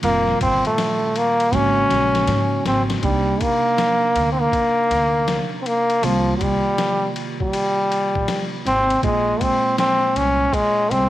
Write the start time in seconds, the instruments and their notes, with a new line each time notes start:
0.02 upright bass F1, tine electric piano A#2 D#3 G3 F4, trombone A#3, ride
0.27 snare
0.41 upright bass G1, trombone C4, kick, ride
0.65 trombone A3, ride
0.78 snare, hi-hat pedal, ride
1.16 trombone A#3, ride
1.40 ride
1.52 upright bass G#1, tine electric piano C#3 G#3 A#3 F#4, trombone C#4, kick, snare, ride
1.90 upright bass A#1, snare, ride
2.15 snare, ride
2.27 upright bass G#2, snare, hi-hat pedal, ride
2.65 upright bass G#1, trombone C4, snare, ride
2.90 snare, ride
3.02 upright bass C2, tine electric piano C3 A#3 D4 D#4, trombone G3, kick, ride
3.41 trombone A#3, kick, ride
3.78 snare, hi-hat pedal, ride
4.15 upright bass D2, ride
4.32 trombone C4
4.41 trombone A#3
4.52 kick, ride
4.91 upright bass D2, ride
5.28 snare, hi-hat pedal, ride
5.62 trombone C4
5.66 trombone A#3, ride
5.90 ride
6.02 upright bass C2, tine electric piano C3 D#3 A#3 F4, trombone F3, ride
6.37 trombone F#3, ride
6.41 upright bass C2, trombone G3, kick
6.78 snare, hi-hat pedal, ride
7.16 ride
7.40 trombone G3, kick
7.53 ride
7.92 ride
8.15 upright bass A#1, kick
8.28 snare, hi-hat pedal, ride
8.65 upright bass G#1, trombone C4, ride
8.90 ride
9.02 upright bass A#1, tine electric piano A#2 G#3 A#3 F4, trombone G#3, kick, ride
9.41 trombone C4, kick, ride
9.78 trombone C4, snare, hi-hat pedal, ride
10.15 upright bass C2, trombone C#4, ride
10.53 trombone G#3, kick, ride
10.90 upright bass C2, trombone C4, ride